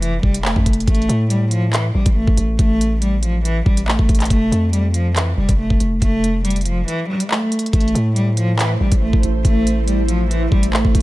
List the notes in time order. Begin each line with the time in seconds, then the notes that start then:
Already playing: F1
0.02 E3, closed hi-hat
0.23 F1 G3, kick
0.34 closed hi-hat
0.45 A3, clap
0.56 F2, kick
0.66 F1, kick, closed hi-hat
0.73 closed hi-hat
0.80 closed hi-hat
0.88 A1 A3, kick, closed hi-hat
0.95 closed hi-hat
1.02 closed hi-hat
1.09 A2, closed hi-hat
1.30 G3, closed hi-hat
1.51 F3, closed hi-hat
1.73 E3, clap, closed hi-hat
1.95 A1 G3
2.06 A1, kick, closed hi-hat
2.16 A3
2.27 A1, kick
2.37 A1, closed hi-hat
2.59 A1 A3, kick, closed hi-hat
2.81 closed hi-hat
3.02 G3, closed hi-hat
3.23 F3, closed hi-hat
3.45 E3, closed hi-hat
3.66 A1 G3, kick
3.77 closed hi-hat
3.88 A3, clap
3.99 A1, kick
4.09 A1, kick, closed hi-hat
4.15 closed hi-hat
4.20 clap, closed hi-hat
4.25 closed hi-hat
4.30 F1 A3, kick, closed hi-hat
4.52 F2, closed hi-hat
4.73 G3, closed hi-hat
4.94 F3, closed hi-hat
5.16 E3, clap, closed hi-hat
5.37 F1 G3
5.49 F1, kick, closed hi-hat
5.59 A3
5.70 F1, kick
5.80 F1, closed hi-hat
6.02 F1 A3, kick, closed hi-hat
6.24 closed hi-hat
6.45 G3, closed hi-hat
6.50 closed hi-hat
6.56 closed hi-hat
6.61 closed hi-hat
6.65 F3, closed hi-hat
6.88 E3, closed hi-hat
7.09 G3
7.20 closed hi-hat
7.30 A3, clap
7.52 closed hi-hat
7.59 closed hi-hat
7.66 closed hi-hat
7.73 A1 A3 E4 C5, kick, closed hi-hat
7.80 closed hi-hat
7.88 closed hi-hat
7.95 A2, closed hi-hat
8.16 G3, closed hi-hat
8.37 F3, closed hi-hat
8.59 E3, clap, closed hi-hat
8.80 A1 G3
8.92 A1, kick, closed hi-hat
9.02 A3
9.13 A1, kick
9.23 A1, closed hi-hat
9.45 A1 A3, kick, closed hi-hat
9.67 closed hi-hat
9.88 G3, closed hi-hat
10.08 F3, closed hi-hat
10.30 E3, closed hi-hat
10.52 A1 G3, kick
10.63 closed hi-hat
10.73 A3, clap
10.85 A1, kick
10.95 A1, kick, closed hi-hat